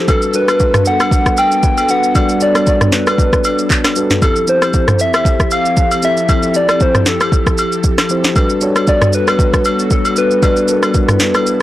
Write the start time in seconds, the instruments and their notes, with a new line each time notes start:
Already playing: tine electric piano F3 C5, analog synth pad A4
0.08 tine electric piano G3 D4 F#4 A4 B4, analog synth pad G3 B3 D4, soft synth lead A4, kick, high agogo, shaker
0.22 shaker
0.34 tine electric piano G3 D4 F#4 A4 A#4, soft synth lead B4, shaker
0.41 tine electric piano B4
0.48 cross-stick, high agogo, shaker
0.60 kick, shaker
0.74 cross-stick, mid tom, shaker
0.85 soft synth lead F#5, shaker
1.00 cross-stick, high agogo, shaker
1.11 kick, shaker
1.26 kick, cross-stick, shaker
1.37 soft synth lead G5, high agogo, shaker
1.52 shaker
1.63 kick, shaker
1.78 high agogo, shaker
1.89 tine electric piano G3 D4 F#4 A4 B4, soft synth lead F#5, shaker
2.03 shaker
2.15 tine electric piano G3 D4 F#4 A4 D5, kick, high agogo, shaker
2.29 shaker
2.41 tine electric piano G3 D4 F#4 A4 C#5, soft synth lead D5, shaker
2.48 tine electric piano D5
2.55 cross-stick, high agogo, shaker
2.67 soft synth lead D5, kick, shaker
2.81 cross-stick, mid tom, shaker
2.92 soft synth lead B4, snare, shaker
3.07 cross-stick, high agogo, shaker
3.18 kick, shaker
3.33 kick, cross-stick, shaker
3.44 high agogo, shaker
3.59 shaker
3.70 kick, clap, shaker
3.84 cross-stick, snare, high agogo, shaker
3.96 tine electric piano G3 D4 F#4 A4 B4, shaker
4.10 snare, mid tom, shaker
4.22 tine electric piano F3 C4 E4 G4 A4, analog synth pad F3 C4 G4 A4, soft synth lead A4, kick, high agogo, shaker
4.36 shaker
4.47 tine electric piano F3 C4 E4 G4 C5, soft synth lead C5, shaker
4.62 cross-stick, high agogo, shaker
4.74 kick, shaker
4.88 cross-stick, mid tom, shaker
4.99 soft synth lead E5, shaker
5.14 cross-stick, high agogo, shaker
5.25 kick, shaker
5.40 kick, cross-stick, shaker
5.51 soft synth lead F5, high agogo, shaker
5.65 shaker
5.77 kick, shaker
5.91 high agogo, shaker
6.03 tine electric piano F3 C4 E4 G4 A4, soft synth lead E5, shaker
6.17 shaker
6.29 tine electric piano F3 C4 E4 G4 A4, kick, high agogo, shaker
6.43 shaker
6.54 tine electric piano F3 C4 E4 G4 A4, soft synth lead D5, shaker
6.69 cross-stick, high agogo, shaker
6.80 soft synth lead C5, kick, shaker
6.95 cross-stick, mid tom, shaker
7.06 soft synth lead A4, snare, shaker
7.21 cross-stick, high agogo, shaker
7.32 kick, shaker
7.47 kick, cross-stick, shaker
7.58 high agogo, shaker
7.72 shaker
7.84 kick, shaker
7.98 cross-stick, snare, high agogo, shaker
8.09 tine electric piano F3 C4 E4 G4 C5, shaker
8.24 snare, shaker
8.36 tine electric piano G3 D4 F#4 A4 B4, analog synth pad G3 B3 F#4, kick, high agogo, shaker
8.50 shaker
8.61 tine electric piano G3 D4 F#4 A4 C#5, shaker
8.76 cross-stick, high agogo, shaker
8.87 soft synth lead D5, kick, shaker
9.02 cross-stick, mid tom, shaker
9.13 soft synth lead B4, shaker
9.27 cross-stick, high agogo, shaker
9.39 kick, shaker
9.53 kick, cross-stick, shaker
9.65 high agogo, shaker
9.79 shaker
9.91 soft synth lead A4, kick, shaker
10.05 high agogo, shaker
10.16 tine electric piano G3 D4 F#4 A4 B4, soft synth lead B4, shaker
10.31 shaker
10.42 tine electric piano G3 D4 F#4 A4 D5, analog synth pad E4, kick, high agogo, shaker
10.56 shaker
10.68 tine electric piano G3 D4 F#4 A4 A#4, shaker
10.76 tine electric piano B4
10.83 cross-stick, high agogo, shaker
10.94 kick, shaker
11.09 cross-stick, mid tom, shaker
11.20 snare, shaker
11.34 cross-stick, high agogo, shaker
11.47 shaker